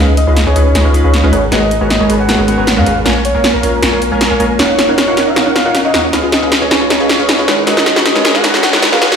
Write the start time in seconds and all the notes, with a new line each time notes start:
Already playing: D#5 F5
0.00 C#2 C#4 G#4 B4
0.17 D#5, closed hi-hat
0.26 C#2 G#3 C#4 D#4 F4 G#4 B4 D#5 F5
0.37 snare, closed hi-hat
0.46 C#2 C#4 G#4 B4 C#5 D#5 G#5
0.55 C#2 G#3 C#4 D#4 F4 G#4 B4 D#5 G#5, closed hi-hat
0.74 C#2 G#3 C#4 D#4 F4 G#4 B4 D#5 A#5, snare, closed hi-hat
0.85 C#2 C#4 G#4 B4 D#5 F5
0.93 G#3 C#4 D#4 F4 B4, closed hi-hat
1.04 C#2 C#4 G#4 B4 D#5 F5
1.14 snare, closed hi-hat
1.22 C#2 G#3 C#4 D#4 F4 G#4 B4 D#5 F5
1.32 G#1 G#3 G#4 A#4 B4 C#5 F#5, closed hi-hat
1.51 G#1 G#3 B3 C#4 F#4 G#4 A#4 B4 C#5 D#5 F#5, snare, closed hi-hat
1.71 closed hi-hat
1.80 G#1 G#3 B3 C#4 F#4 G#4 A#4 B4 C#5 F#5
1.90 D#5, snare, closed hi-hat
2.00 G#1 G#3 G#4 A#4 B4 C#5 G#5
2.08 G#1 G#3 B3 C#4 F#4 G#4 A#4 B4 C#5 G#5, closed hi-hat
2.20 F#5
2.28 G#1 G#3 B3 C#4 F#4 G#4 A#4 B4 C#5 A#5, snare, closed hi-hat
2.39 G#1 G#3 G#4 A#4 B4 C#5 F#5
2.47 G#3 B3 C#4 F#4 A#4 F#5, closed hi-hat
2.58 G#1 G#3 G#4 A#4 B4 C#5 F#5
2.67 snare, closed hi-hat
2.76 G#2 G#3 B3 C#4 F#4 G#4 A#4 B4 C#5 F5 F#5
2.86 G#1 G#3 G#4 A#4 B4 C#5 F#5, closed hi-hat
3.05 A#1 G#3 A#3 C#4 F4 A#4 C#5 F5 G#5, snare, closed hi-hat
3.25 C#5, closed hi-hat
3.34 A#1 G#3 A#3 C#4 F4 A#4 C#5 F5 G#5
3.44 snare, closed hi-hat
3.54 A#1 A#3 A#4 C#5 F5 A#5
3.62 A#1 G#3 A#3 C#4 F4 A#4 C#5 F5 A#5, closed hi-hat
3.82 A#1 G#3 A#3 C#4 F4 A#4 C#5 F5 C#6, snare, closed hi-hat
3.92 A#1 A#3 A#4 C#5 F5 G#5
4.02 closed hi-hat
4.11 A#1 G#3 A#3 C#4 F4 A#4 C#5 F5 G#5
4.21 snare, closed hi-hat
4.31 A#1 A#3 A#4 C#5 F5 G#5
4.39 A#1 G#3 A#3 C#4 F4 A#4 C#5 F5 G#5, closed hi-hat
4.59 D#1 C#4 D#4 A#4 C#5 F5 F#5, snare, closed hi-hat, riser
4.69 D#4
4.78 F4, snare, closed hi-hat
4.89 D#1 C#4 D#4 A#4 C#5 F5 F#5
4.98 D#4 C#5, snare, closed hi-hat
5.08 D#1 D#4 F4 A#4 C#5 F5 F#5
5.17 D#1 C#4 D#4 A#4 C#5 F5 F#5, snare, closed hi-hat
5.27 D#4 F5
5.36 D#1 D#4 F4 A#4 C#5 F5 F#5, snare, closed hi-hat
5.46 D#1 C#4 D#4 A#4 C#5 F5 F#5
5.55 D#4 F5, snare, closed hi-hat
5.65 D#1 D#4 F4 A#4 C#5 F5 F#5
5.75 C#4, snare, closed hi-hat
5.85 D#1 D#4 A#4 C#5 D#5 F5 F#5
5.94 D#2 D#4 F4 A#4 C#5 F5 F#5, snare, closed hi-hat
6.04 C#4
6.13 C#2 C#4 D#4 G#4 B4 D#5 F5, snare, closed hi-hat
6.23 F4
6.32 C#4 D#5, snare, closed hi-hat
6.42 C#2 C#4 D#4 G#4 B4 D#5 F5
6.52 F4, snare, closed hi-hat
6.62 C#2 C#4 G#4 B4 C#5 D#5 G#5
6.71 C#2 C#4 D#4 G#4 B4 D#5 G#5, snare, closed hi-hat
6.81 F4
6.90 C#2 C#4 G#4 B4 D#5 A#5, snare, closed hi-hat
7.00 C#2 C#4 D#4 G#4 B4 D#5 F5
7.09 F4, snare, closed hi-hat
7.19 C#2 C#4 G#4 B4 D#5 F5
7.29 D#4, snare, closed hi-hat
7.39 C#2 C#4 F4 G#4 B4 D#5 F5
7.48 G#1 G#3 C#4 G#4 A#4 B4 C#5 F#5, snare, closed hi-hat
7.58 D#4
7.67 G#1 G#3 F#4 G#4 A#4 B4 C#5 D#5 F#5, snare, closed hi-hat
7.77 C#4, snare
7.86 D#4, snare, closed hi-hat
7.96 G#1 G#3 F#4 G#4 A#4 B4 C#5 F#5, snare
8.06 C#4 D#5, snare, closed hi-hat
8.15 G#1 G#3 D#4 G#4 A#4 B4 C#5 G#5, snare
8.25 G#1 G#3 F#4 G#4 A#4 B4 C#5 G#5, snare, closed hi-hat
8.35 C#4 F#5, snare
8.44 G#1 G#3 D#4 G#4 A#4 B4 C#5 A#5, snare, closed hi-hat
8.54 G#1 G#3 F#4 G#4 A#4 B4 C#5 F#5, snare
8.63 C#4 F#5, snare, closed hi-hat
8.73 G#1 G#3 D#4 G#4 A#4 B4 C#5 F#5, snare
8.82 F#4, snare, closed hi-hat
8.92 G#1 G#3 C#4 G#4 A#4 B4 C#5 F5 F#5, snare
9.02 G#1 G#3 D#4 G#4 A#4 B4 C#5 F#5, snare, closed hi-hat
9.12 F#4, snare